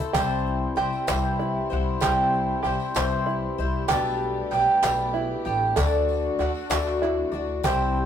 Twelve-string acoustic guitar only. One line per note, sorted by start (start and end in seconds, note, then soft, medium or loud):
0.00 0.14 A3 medium
0.00 0.14 C4 medium
0.00 0.14 E4 medium
0.00 0.14 A4 medium
0.14 0.77 C3 medium
0.14 0.77 E3 medium
0.14 0.75 G3 medium
0.14 0.76 C4 medium
0.14 0.77 E4 medium
0.14 0.77 C5 medium
0.76 1.08 G3 medium
0.76 1.08 C4 medium
0.76 1.07 E4 medium
0.76 1.06 C5 medium
1.08 1.71 C3 medium
1.08 1.71 E3 medium
1.08 1.73 G3 medium
1.08 1.71 C4 medium
1.08 1.70 E4 medium
1.08 1.69 C5 medium
1.70 2.01 G3 soft
1.70 2.01 C4 soft
1.70 2.01 E4 medium
1.70 2.02 C5 medium
2.01 2.64 C3 medium
2.01 2.64 E3 medium
2.01 2.63 G3 medium
2.01 2.63 C4 medium
2.01 2.64 E4 medium
2.01 2.65 C5 medium
2.64 2.95 G3 medium
2.64 2.96 C4 medium
2.64 2.95 E4 medium
2.64 2.95 C5 medium
2.96 3.59 C3 medium
2.96 3.59 E3 medium
2.96 3.59 G3 medium
2.96 3.59 C4 medium
2.96 3.58 E4 medium
2.96 3.57 C5 medium
3.58 3.89 G3 soft
3.58 3.91 C4 medium
3.58 3.90 E4 medium
3.58 3.90 C5 medium
3.90 4.52 B2 medium
3.90 4.52 G3 medium
3.90 4.51 A3 medium
3.90 4.53 D4 medium
3.90 4.52 G4 medium
3.90 4.53 B4 medium
4.51 4.83 A3 medium
4.51 4.82 D4 medium
4.51 4.82 G4 medium
4.51 4.82 B4 medium
4.83 5.47 B2 medium
4.83 5.46 G3 medium
4.83 5.46 A3 medium
4.83 5.46 D4 medium
4.83 5.45 G4 medium
4.83 5.44 B4 medium
5.45 5.76 A3 soft
5.45 5.77 D4 medium
5.45 5.77 G4 medium
5.45 5.77 B4 medium
5.76 6.39 D3 medium
5.76 6.38 A3 medium
5.76 6.39 D4 medium
5.76 6.39 F#4 medium
5.76 6.40 D5 medium
6.39 6.70 A3 medium
6.39 6.70 D4 medium
6.39 6.70 F#4 medium
6.39 6.69 D5 medium
6.70 7.34 D3 medium
6.70 7.34 A3 medium
6.70 7.34 D4 medium
6.70 7.32 F#4 medium
6.70 7.30 D5 medium
7.32 7.64 D4 medium
7.32 7.65 F#4 medium
7.32 7.64 D5 medium
7.64 8.06 C3 medium
7.64 8.06 E3 medium
7.64 8.06 G3 medium
7.64 8.06 C4 medium
7.64 8.06 E4 medium
7.64 8.06 C5 medium